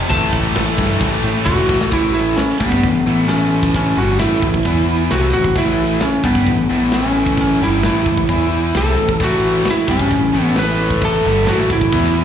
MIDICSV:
0, 0, Header, 1, 10, 480
1, 0, Start_track
1, 0, Tempo, 454890
1, 111, Time_signature, 4, 2, 24, 8
1, 12919, End_track
2, 0, Start_track
2, 0, Title_t, "Lead electric guitar"
2, 0, Program_c, 0, 29
2, 102, Note_on_c, 0, 81, 93
2, 1502, Note_off_c, 0, 81, 0
2, 1537, Note_on_c, 0, 66, 94
2, 1988, Note_off_c, 0, 66, 0
2, 2040, Note_on_c, 0, 64, 80
2, 2251, Note_off_c, 0, 64, 0
2, 2264, Note_on_c, 0, 64, 83
2, 2489, Note_off_c, 0, 64, 0
2, 2490, Note_on_c, 0, 61, 72
2, 2738, Note_off_c, 0, 61, 0
2, 2743, Note_on_c, 0, 59, 78
2, 3457, Note_off_c, 0, 59, 0
2, 3462, Note_on_c, 0, 61, 86
2, 3954, Note_off_c, 0, 61, 0
2, 3967, Note_on_c, 0, 61, 84
2, 4203, Note_on_c, 0, 66, 83
2, 4204, Note_off_c, 0, 61, 0
2, 4422, Note_off_c, 0, 66, 0
2, 4426, Note_on_c, 0, 64, 88
2, 5345, Note_off_c, 0, 64, 0
2, 5396, Note_on_c, 0, 66, 84
2, 5617, Note_off_c, 0, 66, 0
2, 5630, Note_on_c, 0, 66, 90
2, 5876, Note_off_c, 0, 66, 0
2, 5889, Note_on_c, 0, 64, 95
2, 6360, Note_on_c, 0, 61, 83
2, 6373, Note_off_c, 0, 64, 0
2, 6577, Note_off_c, 0, 61, 0
2, 6593, Note_on_c, 0, 59, 90
2, 7318, Note_off_c, 0, 59, 0
2, 7322, Note_on_c, 0, 61, 91
2, 7805, Note_off_c, 0, 61, 0
2, 7818, Note_on_c, 0, 61, 92
2, 8028, Note_off_c, 0, 61, 0
2, 8059, Note_on_c, 0, 64, 86
2, 8277, Note_off_c, 0, 64, 0
2, 8290, Note_on_c, 0, 64, 87
2, 9197, Note_off_c, 0, 64, 0
2, 9257, Note_on_c, 0, 69, 95
2, 9691, Note_off_c, 0, 69, 0
2, 9750, Note_on_c, 0, 66, 96
2, 10223, Note_off_c, 0, 66, 0
2, 10241, Note_on_c, 0, 64, 90
2, 10454, Note_on_c, 0, 61, 91
2, 10462, Note_off_c, 0, 64, 0
2, 11003, Note_off_c, 0, 61, 0
2, 11003, Note_on_c, 0, 59, 91
2, 11174, Note_on_c, 0, 71, 102
2, 11183, Note_off_c, 0, 59, 0
2, 11655, Note_off_c, 0, 71, 0
2, 11659, Note_on_c, 0, 69, 99
2, 12121, Note_on_c, 0, 66, 94
2, 12138, Note_off_c, 0, 69, 0
2, 12339, Note_off_c, 0, 66, 0
2, 12373, Note_on_c, 0, 64, 89
2, 12919, Note_off_c, 0, 64, 0
2, 12919, End_track
3, 0, Start_track
3, 0, Title_t, "Distorted electric guitar"
3, 0, Program_c, 1, 30
3, 0, Note_on_c, 1, 53, 99
3, 111, Note_off_c, 1, 53, 0
3, 1051, Note_on_c, 1, 45, 94
3, 1079, Note_on_c, 1, 52, 83
3, 1094, Note_on_c, 1, 57, 98
3, 2004, Note_off_c, 1, 45, 0
3, 2018, Note_off_c, 1, 52, 0
3, 2026, Note_off_c, 1, 57, 0
3, 12919, End_track
4, 0, Start_track
4, 0, Title_t, "Distorted electric guitar"
4, 0, Program_c, 2, 30
4, 0, Note_on_c, 2, 53, 90
4, 99, Note_on_c, 2, 45, 93
4, 106, Note_off_c, 2, 53, 0
4, 117, Note_on_c, 2, 52, 96
4, 130, Note_on_c, 2, 57, 109
4, 1286, Note_off_c, 2, 57, 0
4, 1289, Note_off_c, 2, 45, 0
4, 1298, Note_off_c, 2, 52, 0
4, 1299, Note_on_c, 2, 57, 86
4, 1315, Note_on_c, 2, 52, 83
4, 1330, Note_on_c, 2, 45, 75
4, 1521, Note_off_c, 2, 45, 0
4, 1529, Note_off_c, 2, 57, 0
4, 1534, Note_on_c, 2, 45, 77
4, 1537, Note_off_c, 2, 52, 0
4, 1551, Note_on_c, 2, 52, 83
4, 1565, Note_on_c, 2, 57, 87
4, 2004, Note_off_c, 2, 45, 0
4, 2009, Note_off_c, 2, 52, 0
4, 2016, Note_off_c, 2, 57, 0
4, 2017, Note_on_c, 2, 45, 92
4, 2022, Note_on_c, 2, 52, 93
4, 2028, Note_on_c, 2, 57, 97
4, 2495, Note_off_c, 2, 45, 0
4, 2497, Note_off_c, 2, 52, 0
4, 2501, Note_off_c, 2, 57, 0
4, 2757, Note_on_c, 2, 55, 96
4, 2759, Note_on_c, 2, 62, 88
4, 2770, Note_on_c, 2, 67, 94
4, 2985, Note_off_c, 2, 55, 0
4, 2986, Note_off_c, 2, 62, 0
4, 2992, Note_off_c, 2, 67, 0
4, 3006, Note_on_c, 2, 45, 55
4, 3013, Note_on_c, 2, 52, 71
4, 3189, Note_off_c, 2, 45, 0
4, 3192, Note_off_c, 2, 52, 0
4, 3237, Note_on_c, 2, 45, 79
4, 3246, Note_on_c, 2, 52, 95
4, 3247, Note_on_c, 2, 57, 99
4, 4185, Note_off_c, 2, 45, 0
4, 4190, Note_off_c, 2, 52, 0
4, 4190, Note_off_c, 2, 57, 0
4, 4193, Note_on_c, 2, 43, 84
4, 4203, Note_on_c, 2, 50, 92
4, 4205, Note_on_c, 2, 55, 105
4, 4423, Note_off_c, 2, 43, 0
4, 4427, Note_off_c, 2, 50, 0
4, 4429, Note_off_c, 2, 55, 0
4, 4431, Note_on_c, 2, 45, 96
4, 4437, Note_on_c, 2, 52, 97
4, 4439, Note_on_c, 2, 57, 92
4, 4662, Note_off_c, 2, 45, 0
4, 4665, Note_off_c, 2, 52, 0
4, 4666, Note_off_c, 2, 57, 0
4, 4674, Note_on_c, 2, 45, 68
4, 4677, Note_on_c, 2, 52, 71
4, 4863, Note_off_c, 2, 45, 0
4, 4865, Note_off_c, 2, 52, 0
4, 4910, Note_on_c, 2, 52, 89
4, 4919, Note_on_c, 2, 59, 92
4, 4923, Note_on_c, 2, 64, 97
4, 5382, Note_off_c, 2, 52, 0
4, 5386, Note_off_c, 2, 59, 0
4, 5386, Note_on_c, 2, 48, 85
4, 5388, Note_off_c, 2, 64, 0
4, 5396, Note_on_c, 2, 55, 98
4, 5399, Note_on_c, 2, 60, 108
4, 5620, Note_off_c, 2, 48, 0
4, 5625, Note_off_c, 2, 55, 0
4, 5626, Note_off_c, 2, 60, 0
4, 5635, Note_on_c, 2, 45, 54
4, 5636, Note_on_c, 2, 52, 65
4, 5823, Note_off_c, 2, 45, 0
4, 5824, Note_off_c, 2, 52, 0
4, 5870, Note_on_c, 2, 45, 85
4, 5877, Note_on_c, 2, 52, 100
4, 5880, Note_on_c, 2, 57, 92
4, 6342, Note_off_c, 2, 45, 0
4, 6346, Note_off_c, 2, 52, 0
4, 6347, Note_off_c, 2, 57, 0
4, 6590, Note_on_c, 2, 55, 93
4, 6599, Note_on_c, 2, 62, 93
4, 6602, Note_on_c, 2, 67, 108
4, 6822, Note_off_c, 2, 55, 0
4, 6826, Note_off_c, 2, 62, 0
4, 6828, Note_off_c, 2, 67, 0
4, 6832, Note_on_c, 2, 45, 64
4, 6839, Note_on_c, 2, 52, 68
4, 7022, Note_off_c, 2, 45, 0
4, 7026, Note_off_c, 2, 52, 0
4, 7066, Note_on_c, 2, 45, 89
4, 7071, Note_on_c, 2, 52, 94
4, 7080, Note_on_c, 2, 57, 93
4, 8020, Note_off_c, 2, 45, 0
4, 8023, Note_off_c, 2, 52, 0
4, 8027, Note_off_c, 2, 57, 0
4, 8037, Note_on_c, 2, 43, 81
4, 8040, Note_on_c, 2, 50, 100
4, 8042, Note_on_c, 2, 55, 100
4, 8266, Note_off_c, 2, 43, 0
4, 8267, Note_off_c, 2, 50, 0
4, 8268, Note_off_c, 2, 55, 0
4, 8271, Note_on_c, 2, 45, 90
4, 8275, Note_on_c, 2, 52, 91
4, 8281, Note_on_c, 2, 57, 98
4, 8503, Note_off_c, 2, 45, 0
4, 8505, Note_off_c, 2, 52, 0
4, 8508, Note_off_c, 2, 57, 0
4, 8521, Note_on_c, 2, 45, 61
4, 8523, Note_on_c, 2, 52, 65
4, 8707, Note_off_c, 2, 45, 0
4, 8708, Note_off_c, 2, 52, 0
4, 8758, Note_on_c, 2, 52, 82
4, 8762, Note_on_c, 2, 59, 93
4, 8770, Note_on_c, 2, 64, 100
4, 9226, Note_off_c, 2, 52, 0
4, 9228, Note_off_c, 2, 59, 0
4, 9232, Note_off_c, 2, 64, 0
4, 9236, Note_on_c, 2, 48, 94
4, 9244, Note_on_c, 2, 55, 97
4, 9250, Note_on_c, 2, 60, 111
4, 9465, Note_off_c, 2, 48, 0
4, 9469, Note_off_c, 2, 55, 0
4, 9472, Note_off_c, 2, 60, 0
4, 9478, Note_on_c, 2, 45, 56
4, 9481, Note_on_c, 2, 52, 65
4, 9666, Note_off_c, 2, 45, 0
4, 9667, Note_off_c, 2, 52, 0
4, 9712, Note_on_c, 2, 45, 93
4, 9718, Note_on_c, 2, 52, 89
4, 9727, Note_on_c, 2, 57, 99
4, 10183, Note_off_c, 2, 45, 0
4, 10186, Note_off_c, 2, 52, 0
4, 10191, Note_off_c, 2, 57, 0
4, 10439, Note_on_c, 2, 55, 93
4, 10446, Note_on_c, 2, 62, 101
4, 10454, Note_on_c, 2, 67, 104
4, 10667, Note_off_c, 2, 55, 0
4, 10671, Note_off_c, 2, 62, 0
4, 10674, Note_off_c, 2, 67, 0
4, 10674, Note_on_c, 2, 45, 61
4, 10685, Note_on_c, 2, 52, 71
4, 10864, Note_off_c, 2, 45, 0
4, 10869, Note_off_c, 2, 52, 0
4, 10920, Note_on_c, 2, 45, 79
4, 10925, Note_on_c, 2, 52, 93
4, 10935, Note_on_c, 2, 57, 93
4, 11868, Note_off_c, 2, 45, 0
4, 11870, Note_off_c, 2, 52, 0
4, 11875, Note_off_c, 2, 57, 0
4, 11875, Note_on_c, 2, 43, 93
4, 11883, Note_on_c, 2, 50, 95
4, 11883, Note_on_c, 2, 55, 97
4, 12103, Note_off_c, 2, 50, 0
4, 12105, Note_off_c, 2, 43, 0
4, 12107, Note_on_c, 2, 45, 96
4, 12109, Note_off_c, 2, 55, 0
4, 12115, Note_on_c, 2, 52, 90
4, 12120, Note_on_c, 2, 57, 101
4, 12341, Note_off_c, 2, 45, 0
4, 12345, Note_off_c, 2, 52, 0
4, 12348, Note_off_c, 2, 57, 0
4, 12353, Note_on_c, 2, 45, 57
4, 12361, Note_on_c, 2, 52, 68
4, 12544, Note_off_c, 2, 45, 0
4, 12547, Note_off_c, 2, 52, 0
4, 12583, Note_on_c, 2, 52, 89
4, 12591, Note_on_c, 2, 59, 90
4, 12594, Note_on_c, 2, 64, 97
4, 12919, Note_off_c, 2, 52, 0
4, 12919, Note_off_c, 2, 59, 0
4, 12919, Note_off_c, 2, 64, 0
4, 12919, End_track
5, 0, Start_track
5, 0, Title_t, "Overdriven electric guitar"
5, 0, Program_c, 3, 29
5, 1780, Note_on_c, 3, 57, 78
5, 1793, Note_on_c, 3, 52, 85
5, 1809, Note_on_c, 3, 45, 67
5, 2007, Note_off_c, 3, 45, 0
5, 2009, Note_off_c, 3, 57, 0
5, 2011, Note_off_c, 3, 52, 0
5, 12919, End_track
6, 0, Start_track
6, 0, Title_t, "Picked electric bass"
6, 0, Program_c, 4, 34
6, 109, Note_on_c, 4, 33, 101
6, 257, Note_off_c, 4, 33, 0
6, 348, Note_on_c, 4, 33, 96
6, 496, Note_off_c, 4, 33, 0
6, 592, Note_on_c, 4, 33, 98
6, 738, Note_off_c, 4, 33, 0
6, 828, Note_on_c, 4, 43, 90
6, 976, Note_off_c, 4, 43, 0
6, 1066, Note_on_c, 4, 33, 90
6, 1214, Note_off_c, 4, 33, 0
6, 1304, Note_on_c, 4, 45, 93
6, 1453, Note_off_c, 4, 45, 0
6, 1547, Note_on_c, 4, 28, 91
6, 1695, Note_off_c, 4, 28, 0
6, 1783, Note_on_c, 4, 33, 87
6, 1932, Note_off_c, 4, 33, 0
6, 2029, Note_on_c, 4, 33, 97
6, 2475, Note_off_c, 4, 33, 0
6, 2751, Note_on_c, 4, 43, 89
6, 2972, Note_off_c, 4, 43, 0
6, 2992, Note_on_c, 4, 33, 76
6, 3213, Note_off_c, 4, 33, 0
6, 3229, Note_on_c, 4, 33, 95
6, 4146, Note_off_c, 4, 33, 0
6, 4193, Note_on_c, 4, 31, 90
6, 4414, Note_off_c, 4, 31, 0
6, 4436, Note_on_c, 4, 33, 92
6, 4656, Note_off_c, 4, 33, 0
6, 4667, Note_on_c, 4, 33, 76
6, 4891, Note_off_c, 4, 33, 0
6, 4912, Note_on_c, 4, 40, 84
6, 5357, Note_off_c, 4, 40, 0
6, 5393, Note_on_c, 4, 36, 88
6, 5614, Note_off_c, 4, 36, 0
6, 5635, Note_on_c, 4, 33, 73
6, 5855, Note_off_c, 4, 33, 0
6, 5863, Note_on_c, 4, 33, 95
6, 6312, Note_off_c, 4, 33, 0
6, 6582, Note_on_c, 4, 43, 93
6, 6808, Note_off_c, 4, 43, 0
6, 6823, Note_on_c, 4, 33, 77
6, 7049, Note_off_c, 4, 33, 0
6, 7069, Note_on_c, 4, 33, 90
6, 7987, Note_off_c, 4, 33, 0
6, 8038, Note_on_c, 4, 31, 87
6, 8257, Note_off_c, 4, 31, 0
6, 8278, Note_on_c, 4, 33, 89
6, 8497, Note_off_c, 4, 33, 0
6, 8506, Note_on_c, 4, 33, 73
6, 8730, Note_off_c, 4, 33, 0
6, 8750, Note_on_c, 4, 40, 85
6, 9196, Note_off_c, 4, 40, 0
6, 9232, Note_on_c, 4, 36, 85
6, 9454, Note_off_c, 4, 36, 0
6, 9476, Note_on_c, 4, 33, 69
6, 9696, Note_off_c, 4, 33, 0
6, 9709, Note_on_c, 4, 33, 94
6, 10156, Note_off_c, 4, 33, 0
6, 10428, Note_on_c, 4, 43, 86
6, 10652, Note_off_c, 4, 43, 0
6, 10665, Note_on_c, 4, 33, 80
6, 10891, Note_off_c, 4, 33, 0
6, 10919, Note_on_c, 4, 33, 86
6, 11832, Note_off_c, 4, 33, 0
6, 11872, Note_on_c, 4, 31, 91
6, 12094, Note_off_c, 4, 31, 0
6, 12105, Note_on_c, 4, 33, 92
6, 12330, Note_off_c, 4, 33, 0
6, 12344, Note_on_c, 4, 33, 81
6, 12570, Note_off_c, 4, 33, 0
6, 12584, Note_on_c, 4, 40, 92
6, 12919, Note_off_c, 4, 40, 0
6, 12919, End_track
7, 0, Start_track
7, 0, Title_t, "Muted distorted electric guitar strokes"
7, 2513, Note_on_c, 9, 29, 52
7, 2619, Note_off_c, 9, 29, 0
7, 6358, Note_on_c, 9, 29, 61
7, 6464, Note_off_c, 9, 29, 0
7, 10201, Note_on_c, 9, 29, 55
7, 10306, Note_off_c, 9, 29, 0
7, 12919, End_track
8, 0, Start_track
8, 0, Title_t, "Muted overdriven electric guitar strokes"
8, 2510, Note_on_c, 9, 29, 53
8, 2616, Note_off_c, 9, 29, 0
8, 6360, Note_on_c, 9, 29, 56
8, 6466, Note_off_c, 9, 29, 0
8, 10184, Note_on_c, 9, 29, 54
8, 10290, Note_off_c, 9, 29, 0
8, 12919, End_track
9, 0, Start_track
9, 0, Title_t, "Muted picked electric bass strokes"
9, 2518, Note_on_c, 9, 29, 40
9, 2623, Note_off_c, 9, 29, 0
9, 6355, Note_on_c, 9, 29, 39
9, 6460, Note_off_c, 9, 29, 0
9, 10191, Note_on_c, 9, 29, 42
9, 10297, Note_off_c, 9, 29, 0
9, 12919, End_track
10, 0, Start_track
10, 0, Title_t, "Drums"
10, 109, Note_on_c, 9, 36, 116
10, 112, Note_on_c, 9, 49, 92
10, 215, Note_off_c, 9, 36, 0
10, 218, Note_off_c, 9, 49, 0
10, 347, Note_on_c, 9, 36, 83
10, 348, Note_on_c, 9, 49, 69
10, 452, Note_off_c, 9, 36, 0
10, 454, Note_off_c, 9, 49, 0
10, 586, Note_on_c, 9, 49, 89
10, 589, Note_on_c, 9, 38, 120
10, 692, Note_off_c, 9, 49, 0
10, 695, Note_off_c, 9, 38, 0
10, 825, Note_on_c, 9, 36, 88
10, 829, Note_on_c, 9, 49, 70
10, 930, Note_off_c, 9, 36, 0
10, 935, Note_off_c, 9, 49, 0
10, 1060, Note_on_c, 9, 49, 92
10, 1064, Note_on_c, 9, 36, 114
10, 1165, Note_off_c, 9, 49, 0
10, 1169, Note_off_c, 9, 36, 0
10, 1307, Note_on_c, 9, 49, 69
10, 1413, Note_off_c, 9, 49, 0
10, 1544, Note_on_c, 9, 36, 74
10, 1649, Note_off_c, 9, 36, 0
10, 1785, Note_on_c, 9, 36, 97
10, 1891, Note_off_c, 9, 36, 0
10, 1912, Note_on_c, 9, 38, 88
10, 2017, Note_off_c, 9, 38, 0
10, 2025, Note_on_c, 9, 46, 58
10, 2026, Note_on_c, 9, 36, 109
10, 2131, Note_off_c, 9, 36, 0
10, 2131, Note_off_c, 9, 46, 0
10, 2503, Note_on_c, 9, 46, 53
10, 2506, Note_on_c, 9, 38, 103
10, 2609, Note_off_c, 9, 46, 0
10, 2612, Note_off_c, 9, 38, 0
10, 2748, Note_on_c, 9, 36, 85
10, 2853, Note_off_c, 9, 36, 0
10, 2870, Note_on_c, 9, 36, 81
10, 2975, Note_off_c, 9, 36, 0
10, 2990, Note_on_c, 9, 46, 59
10, 2991, Note_on_c, 9, 36, 90
10, 3095, Note_off_c, 9, 46, 0
10, 3096, Note_off_c, 9, 36, 0
10, 3470, Note_on_c, 9, 46, 61
10, 3473, Note_on_c, 9, 38, 115
10, 3576, Note_off_c, 9, 46, 0
10, 3579, Note_off_c, 9, 38, 0
10, 3830, Note_on_c, 9, 36, 78
10, 3935, Note_off_c, 9, 36, 0
10, 3951, Note_on_c, 9, 36, 95
10, 3956, Note_on_c, 9, 46, 65
10, 4057, Note_off_c, 9, 36, 0
10, 4061, Note_off_c, 9, 46, 0
10, 4424, Note_on_c, 9, 46, 59
10, 4427, Note_on_c, 9, 38, 110
10, 4529, Note_off_c, 9, 46, 0
10, 4532, Note_off_c, 9, 38, 0
10, 4669, Note_on_c, 9, 36, 86
10, 4775, Note_off_c, 9, 36, 0
10, 4791, Note_on_c, 9, 36, 83
10, 4896, Note_off_c, 9, 36, 0
10, 4910, Note_on_c, 9, 36, 98
10, 4911, Note_on_c, 9, 46, 61
10, 5015, Note_off_c, 9, 36, 0
10, 5016, Note_off_c, 9, 46, 0
10, 5387, Note_on_c, 9, 46, 58
10, 5390, Note_on_c, 9, 38, 108
10, 5492, Note_off_c, 9, 46, 0
10, 5495, Note_off_c, 9, 38, 0
10, 5744, Note_on_c, 9, 36, 81
10, 5850, Note_off_c, 9, 36, 0
10, 5859, Note_on_c, 9, 46, 58
10, 5863, Note_on_c, 9, 36, 94
10, 5964, Note_off_c, 9, 46, 0
10, 5969, Note_off_c, 9, 36, 0
10, 6337, Note_on_c, 9, 46, 55
10, 6340, Note_on_c, 9, 38, 106
10, 6443, Note_off_c, 9, 46, 0
10, 6446, Note_off_c, 9, 38, 0
10, 6581, Note_on_c, 9, 36, 85
10, 6687, Note_off_c, 9, 36, 0
10, 6702, Note_on_c, 9, 36, 79
10, 6808, Note_off_c, 9, 36, 0
10, 6818, Note_on_c, 9, 46, 58
10, 6822, Note_on_c, 9, 36, 95
10, 6924, Note_off_c, 9, 46, 0
10, 6927, Note_off_c, 9, 36, 0
10, 7298, Note_on_c, 9, 46, 61
10, 7302, Note_on_c, 9, 38, 115
10, 7404, Note_off_c, 9, 46, 0
10, 7407, Note_off_c, 9, 38, 0
10, 7664, Note_on_c, 9, 36, 76
10, 7769, Note_off_c, 9, 36, 0
10, 7776, Note_on_c, 9, 46, 58
10, 7782, Note_on_c, 9, 36, 90
10, 7882, Note_off_c, 9, 46, 0
10, 7887, Note_off_c, 9, 36, 0
10, 8264, Note_on_c, 9, 46, 61
10, 8267, Note_on_c, 9, 38, 107
10, 8369, Note_off_c, 9, 46, 0
10, 8372, Note_off_c, 9, 38, 0
10, 8506, Note_on_c, 9, 36, 85
10, 8611, Note_off_c, 9, 36, 0
10, 8626, Note_on_c, 9, 36, 81
10, 8731, Note_off_c, 9, 36, 0
10, 8746, Note_on_c, 9, 46, 57
10, 8747, Note_on_c, 9, 36, 98
10, 8851, Note_off_c, 9, 46, 0
10, 8852, Note_off_c, 9, 36, 0
10, 9229, Note_on_c, 9, 46, 60
10, 9232, Note_on_c, 9, 38, 120
10, 9334, Note_off_c, 9, 46, 0
10, 9337, Note_off_c, 9, 38, 0
10, 9589, Note_on_c, 9, 36, 80
10, 9694, Note_off_c, 9, 36, 0
10, 9704, Note_on_c, 9, 49, 90
10, 9709, Note_on_c, 9, 36, 95
10, 9810, Note_off_c, 9, 49, 0
10, 9815, Note_off_c, 9, 36, 0
10, 10184, Note_on_c, 9, 46, 56
10, 10187, Note_on_c, 9, 38, 103
10, 10289, Note_off_c, 9, 46, 0
10, 10293, Note_off_c, 9, 38, 0
10, 10426, Note_on_c, 9, 36, 89
10, 10532, Note_off_c, 9, 36, 0
10, 10546, Note_on_c, 9, 36, 81
10, 10652, Note_off_c, 9, 36, 0
10, 10658, Note_on_c, 9, 46, 57
10, 10666, Note_on_c, 9, 36, 89
10, 10764, Note_off_c, 9, 46, 0
10, 10771, Note_off_c, 9, 36, 0
10, 11141, Note_on_c, 9, 46, 57
10, 11144, Note_on_c, 9, 38, 109
10, 11246, Note_off_c, 9, 46, 0
10, 11249, Note_off_c, 9, 38, 0
10, 11506, Note_on_c, 9, 36, 81
10, 11612, Note_off_c, 9, 36, 0
10, 11626, Note_on_c, 9, 36, 99
10, 11626, Note_on_c, 9, 46, 61
10, 11731, Note_off_c, 9, 36, 0
10, 11732, Note_off_c, 9, 46, 0
10, 12100, Note_on_c, 9, 46, 61
10, 12103, Note_on_c, 9, 38, 110
10, 12205, Note_off_c, 9, 46, 0
10, 12208, Note_off_c, 9, 38, 0
10, 12346, Note_on_c, 9, 36, 82
10, 12451, Note_off_c, 9, 36, 0
10, 12465, Note_on_c, 9, 36, 78
10, 12570, Note_off_c, 9, 36, 0
10, 12581, Note_on_c, 9, 46, 61
10, 12584, Note_on_c, 9, 36, 96
10, 12686, Note_off_c, 9, 46, 0
10, 12689, Note_off_c, 9, 36, 0
10, 12703, Note_on_c, 9, 38, 33
10, 12809, Note_off_c, 9, 38, 0
10, 12919, End_track
0, 0, End_of_file